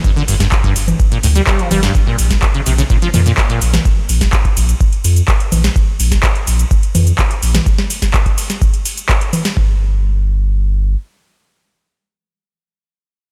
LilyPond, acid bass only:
\new Staff \with { instrumentName = "Acid bass" } { \clef bass \time 4/4 \key g \minor \tempo 4 = 126 g,16 d16 g,16 g,16 r16 g,16 r8. bes,16 a,16 g16 g16 f16 g16 g,16 | r16 bes,16 r8. des16 c16 des16 bes,16 f16 bes,16 bes,16 r16 bes,16 r8 | r1 | r1 |
r1 | r1 | r1 | }